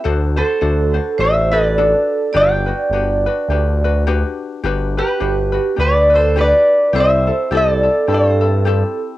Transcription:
0.04 D2 D4 F#4 A4 C5
0.36 D4 F#4 A4 C5
0.61 D2 D4 F#4 A4 C5
0.94 D4 F#4 B4 C5
1.18 A1 D4 F#4 A4 C5 E5
1.52 D4 F#4 A4 B4 C5 D5
1.78 D4 F#4 A4
2.33 G1 D4 F#4 G4 B4 D5 G5
2.37 D5
2.66 D4 F#4 B4
2.90 G1 D4 F#4 G4
2.94 B4
3.26 D4 F#4 B4
3.49 D2 D4 F#4 G4 B4
3.84 D4 F#4 B4
4.07 D4 F#4 G4 B4
4.64 G1 D4 F#4 G4 B4
4.97 D4 F#4 G4 B4
5.20 G1 D4 F#4 G4 B4
5.52 D4 F#4 B4
5.76 D2 D4 F#4 G4 B4
5.81 B4 D5
6.10 D4 F#4 A4 B4
6.15 A4 C5
6.36 D4 F#4 G4 B4
6.41 D5
6.93 C2 C4 E4 G4 A4 C5
6.98 C5 E5
7.27 C4 E4 A4
7.51 C2 C4 E4 G4 A4
7.57 D5
7.83 C4 E4 A4
8.07 G2 C4 E4 G4 A4
8.12 A4 C5
8.41 C4 E4 A4
8.65 C4 E4 G4 A4

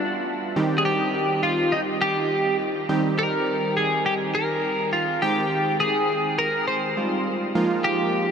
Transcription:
Already playing: G3 B3 D4 F4
0.56 D#3 G3 C4 D#4 G4
0.78 G#4
0.85 G4
1.43 F4
1.72 D#4
2.02 G4
2.89 D#3 G3 C4 D#4 G4
3.19 A#4
3.77 G#4
4.06 G4
4.35 A#4
4.93 F4
5.22 D#3 G#3 C4 D#4 G4 G5
5.80 G#4
6.39 A#4
6.68 C5
6.97 G3 G#3 C4 D#4 F4
7.55 F3 G#3 A#3 D#4 F4
7.84 G4

